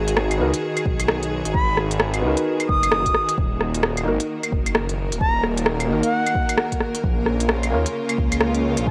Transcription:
Already playing: G#1 D#3 B3 D#4 F#4 G#4 A#4
0.08 closed hi-hat
0.17 cross-stick
0.31 closed hi-hat, claves
0.37 C#2 B3 D#4 F#4 A#4
0.54 closed hi-hat
0.77 closed hi-hat, claves
0.86 B1, kick
1.00 closed hi-hat, claves
1.08 cross-stick
1.23 closed hi-hat
1.45 G#1, closed hi-hat
1.54 G#1 B5, kick
1.77 cross-stick
1.91 closed hi-hat
2.00 cross-stick
2.14 closed hi-hat, claves
2.19 C#2 B3 D#4
2.24 F#4 A#4
2.37 closed hi-hat
2.60 closed hi-hat, claves
2.68 F#1 D#6, kick
2.83 closed hi-hat, claves
2.91 cross-stick
3.06 D#1, kick, closed hi-hat
3.14 cross-stick
3.29 closed hi-hat
3.38 D#1, kick
3.55 A#3
3.61 cross-stick
3.75 closed hi-hat
3.83 A#4, cross-stick
3.97 closed hi-hat, claves
4.04 G#1 A#3 D#4 F#4
4.08 A#4
4.20 closed hi-hat
4.43 closed hi-hat, claves
4.52 F#1, kick
4.66 closed hi-hat, claves
4.75 cross-stick
4.89 closed hi-hat
5.12 D#1, closed hi-hat
5.20 D#1 A#5, kick
5.44 cross-stick
5.58 closed hi-hat
5.66 cross-stick
5.80 closed hi-hat, claves
5.85 A#3 D#4
5.89 G#1 F#4 A#4
6.03 F#5, closed hi-hat
6.26 closed hi-hat, claves
6.35 kick
6.49 closed hi-hat, claves
6.57 cross-stick
6.72 kick, closed hi-hat
6.80 cross-stick
6.95 closed hi-hat
7.04 A#1 C#3, kick
7.26 cross-stick
7.40 closed hi-hat
7.45 F4, cross-stick
7.63 closed hi-hat, claves
7.70 D#2 A#3 C#4 F4
7.74 A#4
7.86 closed hi-hat
8.09 closed hi-hat, claves
8.18 C#2, kick
8.32 closed hi-hat, claves
8.40 cross-stick
8.54 closed hi-hat
8.77 A#1, closed hi-hat
8.87 A#1 A#5, kick

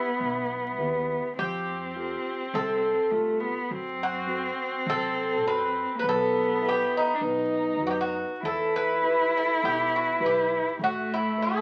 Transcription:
Already playing: B3 E4
0.19 B1 B2
0.78 D#2 B3 E4 G4
1.37 F2 F3 C4 G4
1.96 F4 G4 A4
2.53 C2 C3 A4
3.11 C2 A3 F4 G4 A4
3.40 B3
3.71 F#2 F#3 C4
4.03 F#4
4.27 C4 F#4 A4
4.86 C3 F#3 A4
5.44 F#2 C4 F#4 A4 B4
5.96 A#3 B4
6.03 B1 B3
6.09 A4
6.61 E4 G4 B4
6.69 G4
6.97 D#4
7.14 D4
7.21 B1 B3 D#4
7.81 F#2 F#4 B4 D#5
7.87 F#4 G4
8.01 F#4
8.43 E2 E3 E4 A4
8.76 B4
9.02 E4 G4 B4
9.37 A4
9.62 B1 B2 G4
9.96 F#4
10.20 B1 E4 G4 B4
10.26 G4
10.79 A1 A3
10.84 F#4
11.14 E4
11.37 E4 A4 C5
11.42 A4

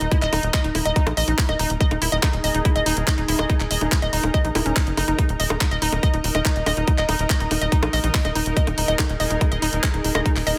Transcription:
Already playing: D#4 A#4 D#5 A#5
0.01 D#1 D#4, closed hi-hat
0.12 E4, kick, closed hi-hat
0.22 D#1 D#5, clap, closed hi-hat
0.33 D#1 D#4, open hi-hat, high bongo
0.43 D#1, closed hi-hat
0.54 D#5, kick, clap, closed hi-hat
0.64 D#1 D#4, closed hi-hat
0.75 D#1 E4, open hi-hat, high bongo
0.85 D#1 D#5, closed hi-hat
0.96 D#4, kick, closed hi-hat
1.07 A#1, closed hi-hat, high bongo
1.17 A#1 D#5, open hi-hat
1.28 A#1 D#4, closed hi-hat
1.38 E4, kick, clap, open hi-hat
1.49 D#1 D#5, closed hi-hat, high bongo
1.59 D#1 D#4, open hi-hat
1.70 D#1, closed hi-hat
1.81 G#4 D#5, kick, closed hi-hat
1.91 D#1 D#4, closed hi-hat, high bongo
2.02 D#1 E4, open hi-hat
2.12 D#1 D#5, closed hi-hat
2.23 D#4, kick, clap, closed hi-hat, high bongo
2.33 D#1, closed hi-hat
2.44 D#1 D#5, open hi-hat
2.54 D#1 D#4, closed hi-hat
2.65 E4, kick, closed hi-hat, high bongo
2.76 D#1 D#5, closed hi-hat
2.86 D#1 D#4, open hi-hat
2.97 D#1, closed hi-hat
3.07 D#5, kick, clap, closed hi-hat, high bongo
3.18 D#1 D#4, closed hi-hat
3.28 D#1 E4, open hi-hat
3.39 D#1 D#5, closed hi-hat, high bongo
3.50 D#4, kick, closed hi-hat
3.60 D#1, clap, closed hi-hat
3.71 D#1 D#5, open hi-hat
3.81 D#1 D#4, closed hi-hat, high bongo
3.92 E4, kick, clap, closed hi-hat
4.02 D#1 D#5, closed hi-hat
4.13 D#1 D#4, open hi-hat
4.23 D#1, closed hi-hat, high bongo
4.34 D#5, kick, closed hi-hat
4.45 A#1 D#4, closed hi-hat
4.55 D#1 E4, open hi-hat, high bongo
4.66 D#1 C#4, closed hi-hat
4.76 D#4, kick, clap, open hi-hat
4.87 F#1, closed hi-hat
4.97 F#1 D#4, open hi-hat, high bongo
5.08 F#1 D#4, closed hi-hat
5.19 D#4 D#5, kick, closed hi-hat, high bongo
5.29 D#1, closed hi-hat
5.40 D#1 D#5, open hi-hat
5.50 D#1 D#4, closed hi-hat, high bongo
5.61 D#4, kick, clap, closed hi-hat
5.71 D#1 D#5, closed hi-hat
5.82 D#1 D#4, open hi-hat
5.92 D#1, high bongo
6.03 D#5, kick, closed hi-hat
6.14 D#1 D#4, closed hi-hat
6.24 D#1 D#4, open hi-hat
6.35 D#1 D#5, closed hi-hat, high bongo
6.45 D#4, kick, clap, closed hi-hat
6.56 D#1, closed hi-hat
6.66 D#1 D#5, open hi-hat, high bongo
6.77 D#1 D#4, closed hi-hat
6.88 D#4, kick, closed hi-hat
6.98 D#1 D#5, clap, closed hi-hat
7.09 D#1 D#4, open hi-hat, high bongo
7.19 D#1, closed hi-hat
7.30 D#5, kick, clap, closed hi-hat
7.40 D#1 D#4, closed hi-hat
7.51 D#1 D#4, open hi-hat, high bongo
7.61 D#1 D#5, closed hi-hat
7.72 D#4, kick, closed hi-hat
7.83 A#1, closed hi-hat, high bongo
7.93 A#1 D#5, open hi-hat
8.04 A#1 D#4, closed hi-hat
8.14 D#4, kick, clap, open hi-hat
8.25 D#1 D#5, closed hi-hat, high bongo
8.35 D#1 D#4, open hi-hat
8.46 D#1, closed hi-hat
8.57 G#4 D#5, kick, closed hi-hat
8.67 D#1 D#4, closed hi-hat, high bongo
8.78 D#1 D#4, open hi-hat
8.88 D#1 D#5, closed hi-hat
8.99 D#4, kick, clap, closed hi-hat, high bongo
9.09 D#1, closed hi-hat
9.20 D#1 D#5, open hi-hat
9.30 D#1 D#4, closed hi-hat
9.41 D#4, kick, closed hi-hat, high bongo
9.52 D#1 D#5, closed hi-hat
9.62 D#1 D#4, open hi-hat
9.73 D#1, closed hi-hat
9.83 D#5, kick, clap, closed hi-hat, high bongo
9.94 D#1 D#4, closed hi-hat
10.04 D#1 D#4, open hi-hat
10.15 D#1 D#5, closed hi-hat, high bongo
10.26 D#4, kick, closed hi-hat
10.36 D#1, clap, open hi-hat
10.47 D#1 D#5, open hi-hat

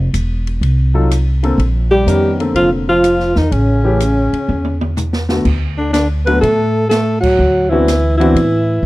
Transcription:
0.14 E1, hi-hat pedal, ride
0.47 ride
0.61 C2, ride
0.94 F#3 D#4 F4 A4
1.11 cross-stick, hi-hat pedal, ride
1.43 D3 A#3 C4 A4, ride
1.58 A#1, ride
1.91 G3 G4
2.06 F2 D#3 B3 C#4 A#4, hi-hat pedal, ride
2.40 D3 A#3 C4 A4, ride
2.54 F1 F3 F4, ride
2.88 F3 F4
3.04 cross-stick, hi-hat pedal, ride
3.20 snare
3.35 E2 D#3 D#4, snare
3.51 A1 C#3 C#4, ride
3.84 E3 A3 C#4 G4
4.00 hi-hat pedal, ride
4.33 muted upright bass stroke, ride
4.48 E2, high tom
4.64 high tom
4.81 high tom
4.97 hi-hat pedal, mid tom
5.13 snare
5.29 D3 A3 B3 F#4, snare
5.45 D2, kick, crash
5.78 D3 D4
5.93 D3 D4, snare, hi-hat pedal, ride
6.26 D3 F#3 A3 B3 F#4 B4, ride
6.41 A2 A3 A4, ride
6.89 A3 A4, snare, hi-hat pedal, ride
7.21 F#3 F#4, kick, crash
7.39 D2
7.69 E3 B3 C4 D4 E4 F#4
7.88 snare, hi-hat pedal, ride
8.17 E3 B3 C4 D4 E4 F#4, ride
8.34 A2, ride
8.83 A2

